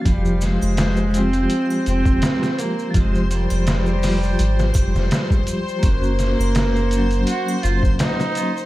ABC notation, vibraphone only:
X:1
M:4/4
L:1/8
Q:"Swing 16ths" 1/4=83
K:Fm
V:1 name="Vibraphone"
[F,FG]3 [A,FG]4- [A,FG] | [F,FG]3 [G,FG]4- [G,FG] | [B,D_G]3 [_G,B,D]4- [G,B,D] |]